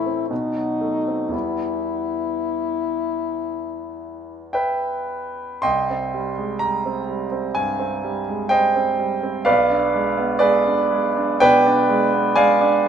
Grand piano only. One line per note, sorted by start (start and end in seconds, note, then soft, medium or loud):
0.00 0.28 A2 soft
0.00 0.33 E3 soft
0.00 0.21 A3 soft
0.06 0.31 C4 soft
0.31 1.30 B2 soft
0.56 0.97 F#3 soft
0.81 1.22 A3 soft
1.07 1.33 C4 soft
1.29 5.58 E2 soft
1.29 5.59 E3 soft
1.29 5.60 G3 soft
1.29 5.60 B3 soft
4.53 5.60 B4 soft
4.53 5.60 E5 soft
4.53 5.62 G5 medium
5.62 7.53 C2 medium
5.62 6.58 D#5 medium
5.62 6.58 G5 medium
5.62 6.61 C6 medium
5.90 6.29 C4 soft
6.14 6.53 G3 soft
6.38 6.62 G#3 soft
6.59 7.00 G3 soft
6.59 7.56 A#5 medium
6.86 7.24 C4 soft
7.08 7.47 G3 soft
7.32 7.71 C4 soft
7.55 7.96 G2 soft
7.55 8.52 G#5 medium
7.79 8.19 C4 soft
8.04 8.43 G3 soft
8.29 8.53 G#3 soft
8.49 8.91 G3 soft
8.49 9.42 C5 medium
8.49 9.43 D#5 medium
8.49 9.46 G5 medium
8.76 9.14 C4 soft
8.99 9.38 G3 soft
9.23 9.47 C4 soft
9.45 11.38 B1 medium
9.45 10.37 B4 medium
9.45 10.37 D5 medium
9.45 10.41 F5 medium
9.70 10.08 D4 soft
9.94 10.32 G#3 soft
10.18 10.42 B3 soft
10.39 10.81 G#3 soft
10.39 11.38 G#4 medium
10.39 11.38 B4 medium
10.39 11.40 D5 medium
10.67 11.08 D4 medium
10.91 11.32 G#3 medium
11.17 11.57 D4 medium
11.40 11.81 B2 medium
11.40 12.34 B4 medium
11.40 12.34 D5 medium
11.40 12.37 G5 loud
11.67 12.05 D4 medium
11.90 12.28 G#3 medium
12.13 12.38 B3 soft
12.35 12.77 G#3 medium
12.35 12.88 D5 medium
12.35 12.88 F5 medium
12.35 12.88 G#5 loud
12.61 12.88 D4 medium